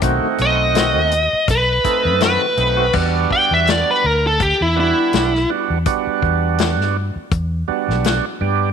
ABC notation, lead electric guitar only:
X:1
M:4/4
L:1/16
Q:"Swing 16ths" 1/4=82
K:Em
V:1 name="Lead electric guitar"
z2 ^d6 B4 B4 | z2 g e d B ^A =A G E E4 z2 | z16 |]